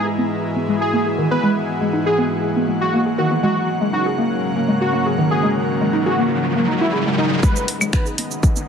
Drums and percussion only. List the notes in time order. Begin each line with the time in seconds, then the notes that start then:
7.43 kick, shaker
7.56 mid tom, shaker
7.68 open hi-hat
7.81 mid tom, claves, shaker
7.93 finger snap, kick, shaker
8.06 shaker
8.18 open hi-hat
8.31 shaker
8.43 kick, shaker
8.56 shaker